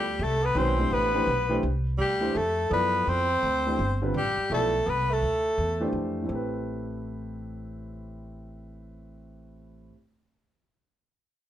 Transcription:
Already playing: D2 G3 G4
0.19 C2 A3
0.24 A4
0.43 B3 B4
0.55 B1 D#3 G#3 C4 C#4 F#4 B4 C5
0.77 E3 A3 D4 G4 C5
0.91 A1 B3 B4
1.14 E3 A3 D4 G4 C5
1.27 B1
1.49 E3 A3 D4 G4 C5
1.63 C2
1.98 D2 G3 G4
2.20 E3 A3 D4 G4 C5
2.34 F2 A3 A4
2.69 F#2 F3 B3 E4 A4 B4 D5
3.07 F2 C4 C5
3.43 D2
3.67 E3 A3 D4 G4 C5
3.79 G1
4.02 D3 G3 C4 F4 B4
4.14 A1 G3 G4
4.37 muted upright bass stroke
4.50 B1 F3 A3 B3 E4 A4 D5
4.86 C2 B3 B4
5.10 A3 A4
5.22 D2
5.58 E2
5.80 E3 A3 D4 G4 C5
5.93 F2
6.22 A2 A3
6.28 A1 C4 G4
6.35 B4

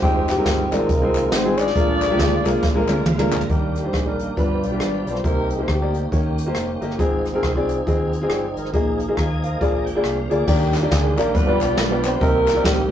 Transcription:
Already playing: G4
0.01 F1 D#3 F3 G3 G#3 C4 D#4 F4 G4 C5, kick, closed hi-hat
0.07 G#3
0.28 G3 C4 D#4 G4, snare, clap, closed hi-hat
0.36 G#3 C4 D#4 F4 A#4
0.45 G1, kick, snare, closed hi-hat
0.71 G#1 G#3 A#3 C4 D#4 F4 A#4 D5, clap, closed hi-hat
0.89 C2, kick, closed hi-hat
1.01 G#3 C4 D#4 F4 C5
1.15 clap, closed hi-hat
1.31 G#1 C4 C5, snare, closed hi-hat
1.44 G#3 C4 D#4 F4 G#4
1.57 D4 F4 G#4 D5, clap, closed hi-hat
1.68 snare
1.75 A#1 A#2 C#3 F3 G#3 A#3 D4 F4 A#4, kick, closed hi-hat
1.80 D3
2.01 clap, closed hi-hat
2.10 G#3 A#3 D4 F4 G4
2.19 D2, kick, snare, closed hi-hat
2.44 C2 G#3 A#3 D4 F4 A#4, clap, closed hi-hat
2.63 A#1, kick, snare
2.75 G#3 A#3 D4 F4 A#4
2.88 D2 D5, clap, high tom
3.06 D2 F5, mid tom
3.18 G#3 A#3 D4 F4 A#4, mid tom
3.32 A#5, clap, floor tom
3.41 floor tom
3.49 D#2 D#3 G3 A#3 D4 D#4 G4 A#4, kick, closed hi-hat
3.75 G3 G4, cross-stick, closed hi-hat
3.84 G3 D4 D#4 C5
3.93 A#1 G#3 G#4, kick, cross-stick, closed hi-hat
4.06 G3 D4 D#4 A#4
4.19 A#3 A#4, closed hi-hat
4.36 G1 G2 F3 G3 B3 D4 F4 G4 B4, kick, closed hi-hat
4.62 B1 D4 F4 B4 D5, closed hi-hat
4.71 G3 D4 F4 G4
4.80 G#1, cross-stick, closed hi-hat
5.06 B1 G3 C4 D4 F4 C5 D5, closed hi-hat
5.16 cross-stick
5.24 C2 C3 D3 A#3 C4 D#4 G4 A#4 C5, kick, closed hi-hat
5.29 D#4
5.50 G#3 G#4, closed hi-hat
5.59 A#3 D#4 G4 C5
5.68 D2 G3 A#3 D#4 G4, kick, cross-stick, closed hi-hat
5.81 A#3 D#4 G4 D5
5.94 closed hi-hat
6.11 D#2 D#3 A#3 C#4 D#4 F#4 G4 C#5, kick, closed hi-hat
6.17 G4
6.38 closed hi-hat
6.46 A#3 D#4 G4 C5
6.55 F1, cross-stick, closed hi-hat
6.81 G1 A#3 D#4 G4 D#5, closed hi-hat
6.91 cross-stick
6.98 G#1 G#2 F3 A#3 C4 D#4 F4 G#4 D#5, kick, closed hi-hat
7.04 C4
7.25 cross-stick, closed hi-hat
7.33 C4 F4 G#4 A#4
7.43 C2, kick, cross-stick, closed hi-hat
7.56 C4 F4 G#4 D5
7.69 closed hi-hat
7.87 D#2 C4 F4 G#4 D#5, kick, closed hi-hat
8.13 closed hi-hat
8.22 C4 F4 G#4 D#5
8.30 G1 D5 G5, cross-stick, closed hi-hat
8.56 G#1 A#4 D#5, closed hi-hat
8.65 cross-stick
8.73 A#1 A#2 F3 A#3 D#4 F4 G#4 D#5, kick, closed hi-hat
8.99 closed hi-hat
9.07 A#3 F4 G#4 D#5
9.17 D#2 D#5 F5 G#5 A#5, kick, cross-stick, closed hi-hat
9.43 A#4 C5 D#5 F5, closed hi-hat
9.59 A#1 A#2 F3 A#3 D4 F4 G#4 D5, kick, closed hi-hat
9.85 G#1 G5, closed hi-hat
9.95 A#3 F4 G#4 D5
10.03 C2 D4 G4 F5, cross-stick, closed hi-hat
10.30 D2 A#3 D4 F4 G#4 D5, closed hi-hat
10.47 D#2 D#3 G3 A#3 D4 D#4 G4 D5, kick, crash
10.73 G3 G4, snare, clap, closed hi-hat
10.81 A#3 D4 D#4 G4 D5
10.91 D2 G#3 G#4, kick, snare, closed hi-hat
11.17 A#1 A#3 D4 D#4 G4 A#4 D5, clap, closed hi-hat
11.33 G1 G2 F3 G3 B3 D4 F4 G4 B4, kick, closed hi-hat
11.47 B3 D4 F4 G4 D5
11.60 B1 D4 F4 B4 D5, clap, closed hi-hat
11.77 B1, snare, closed hi-hat
11.90 B3 D4 F4 G4 D5
12.04 C4 C5, clap, closed hi-hat
12.19 C2 C3 D#3 G3 A#3 C4 D#4 G4 A#4 D#5, kick, closed hi-hat
12.47 snare, clap, closed hi-hat
12.55 C4 D#4 G4 A#4 D5
12.64 A#1 G3 A#3 D#4 G4, kick, snare, closed hi-hat

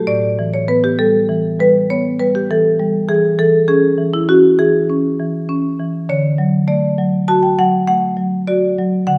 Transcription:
0.07 A2 D5
0.39 E3
0.54 C#5
0.68 B3 B4
0.84 G4
0.99 G3 A4
1.29 E3
1.60 G3 B4
1.90 B3 C#5
2.20 G3 B4
2.35 G4
2.51 E3 A4
2.79 G3
3.09 E3 G#4
3.39 E3 A4
3.68 C#4 G#4
3.98 E3
4.14 E4
4.29 C#4 F#4
4.59 E3 G#4
4.90 C#4
5.19 E3
5.49 C#4
5.80 E3
6.09 D3 C#5
6.38 F#3
6.68 A3 D5
6.98 F#3
7.28 F#4 A5
7.43 G5
7.58 F#3 F#5
7.87 A3 F#5
8.17 F#3
8.47 F#4 D5
8.79 F#3
9.07 D3 F#5

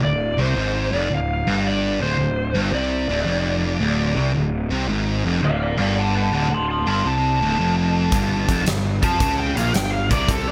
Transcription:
0.02 D1 D2 D5
0.38 C2 C3 C5
0.55 G#1 G#2
0.92 F1 F2 D5
1.11 D1 D2
1.15 F5
1.47 G1 G2
1.67 D5
2.01 D1 D2 C5
2.18 D1 D2
2.55 G1 G2
2.72 C2 C3 D5
3.08 D1 D2
3.26 F1 F2
3.80 D1 D2
4.16 C2 C3
4.34 D1 D2
4.71 C2 C3
4.88 G#1 G#2
5.25 F1 F2
5.42 D1 D2 D5 F5
5.62 D5 F5
5.77 G1 G2 D5 F5
5.98 F#5 A5
6.17 F#5 A5
6.32 D1 D2 F#5 A5
6.50 D1 D2 A5
6.54 C6
6.70 A5 C6
6.86 G1 G2 A5 C6
7.04 C2 C3 A5
7.41 D1 D2
7.59 F1 F2
8.12 G1 G2, kick, closed hi-hat
8.47 F1 F2, kick, closed hi-hat
8.66 G1 G2, snare, closed hi-hat
9.02 F2 F3 A5, kick, closed hi-hat
9.20 C#2 C#3, kick, closed hi-hat
9.39 G5
9.56 A#1 A#2 F5, closed hi-hat
9.74 G1 G2 G5, snare, closed hi-hat
9.94 F5
10.10 C2 C3 D5, kick, closed hi-hat
10.29 A4, kick, closed hi-hat
10.48 D5

